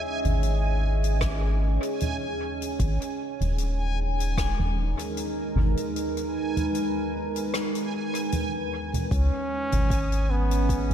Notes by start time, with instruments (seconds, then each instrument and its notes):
Already playing: ambient pad C#4 G#4 D#5 E5, synth texture G#5
0.25 analog synth bass G#1, closed hi-hat, mid tom
0.43 closed hi-hat
1.04 closed hi-hat
1.21 kick, cross-stick, closed hi-hat
1.83 closed hi-hat
2.00 closed hi-hat, mid tom
2.62 closed hi-hat
2.80 analog synth bass G#1, ambient pad G#3, kick, closed hi-hat
3.02 closed hi-hat
3.41 analog synth bass D#1, closed hi-hat, mid tom
3.48 ambient pad D#4
3.58 closed hi-hat
4.20 closed hi-hat
4.37 ambient pad A#4, kick, cross-stick, closed hi-hat
4.59 mid tom
4.93 ambient pad B4
4.99 closed hi-hat
5.17 closed hi-hat
5.56 analog synth bass G#1, mid tom
5.77 closed hi-hat
5.96 closed hi-hat
6.17 closed hi-hat
6.57 closed hi-hat, mid tom
6.75 closed hi-hat
7.36 closed hi-hat
7.54 cross-stick, closed hi-hat
7.75 closed hi-hat
8.15 closed hi-hat
8.32 closed hi-hat, mid tom
8.94 closed hi-hat, mid tom
9.11 analog synth bass C#2, ambient pad C#4, trombone C#4, synth texture D#6, kick, closed hi-hat
9.60 ambient pad G#4 D#5
9.72 analog synth bass G#1, closed hi-hat, mid tom
9.80 ambient pad E5
9.90 kick, closed hi-hat
10.12 closed hi-hat
10.30 trombone B3
10.51 closed hi-hat
10.69 kick, closed hi-hat
10.90 closed hi-hat, mid tom